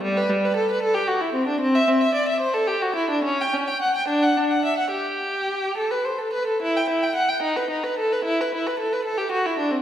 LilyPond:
\new Staff \with { instrumentName = "Violin" } { \time 6/8 \key g \major \tempo 4. = 73 g16 b'16 g16 b'16 a'16 b'16 a'16 g'16 fis'16 e'16 c'16 d'16 | c'16 e''16 c'16 e''16 d''16 e''16 c''16 a'16 g'16 fis'16 e'16 d'16 | cis'16 g''16 cis'16 g''16 fis''16 g''16 d'16 fis''16 d'16 fis''16 e''16 fis''16 | g'4. a'16 b'16 c''16 a'16 b'16 a'16 |
\key e \minor e'16 g''16 e'16 g''16 fis''16 g''16 dis'16 b'16 dis'16 b'16 a'16 b'16 | e'16 b'16 e'16 b'16 a'16 b'16 a'16 g'16 fis'16 e'16 d'16 c'16 | }